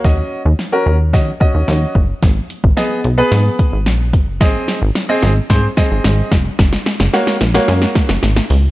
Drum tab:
HH |----------------|x-x-x-x-x-x-x-x-|x-x-x-x-x-x-x-x-|x-x-x-x-x-x-x-o-|
SD |o---o---o---o---|o---o---o---o---|o-o-o-o-o-o-o-o-|oooooooooooooo--|
BD |o-------o-o---o-|o--o------o---o-|o-------o-o---o-|o---------o-----|